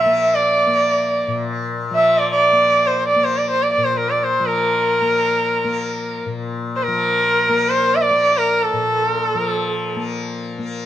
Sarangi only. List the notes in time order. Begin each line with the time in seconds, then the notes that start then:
Already playing: E5
0.34 D5
1.95 E5
2.18 D5
2.32 D5
2.87 C5
3.08 D5
3.25 C5
3.38 D5
3.50 C5
3.62 D5
3.73 D5
3.84 C5
3.93 C5
3.97 A#4
4.10 D5
4.18 D5
4.24 C5
4.46 A#4
6.76 C5
6.83 A#4
7.69 C5
7.96 E5
8.02 D5
8.38 A#4
8.63 A4
9.37 A#4
9.49 A4